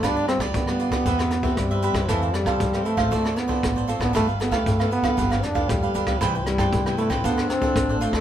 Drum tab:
HH |xxxxx-xxxxx-xxxx|xxx-xxx-x-x-xxx-|xxxxx-xxxxx-xxxx|xxx-xxx-x-x-xxx-|
SD |r-rr-r-r-rr-r--r|r-rr-r-r-rr-r--r|r-rr-r-r-rr-r--r|r-rr-r-r-rr-r--r|
BD |o--oo--oo--oo--o|o--oo--oo--oo--o|o--oo--oo--oo--o|o--oo--oo--oo--o|